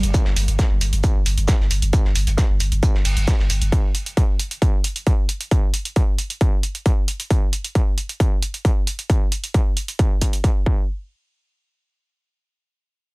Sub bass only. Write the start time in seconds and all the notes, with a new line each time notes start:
0.03 G1
0.26 G1
0.37 G1
0.48 G1
0.71 G1
0.81 G1
0.93 G1
1.15 G1
1.26 G1
1.38 G1
1.60 G1
1.71 G1
1.82 G1
2.05 G1
2.16 G1
2.27 G1
2.50 G1
2.60 G1
2.72 G1
2.94 G1
3.05 G1
3.17 G1
3.39 G1
3.50 G1
3.62 G1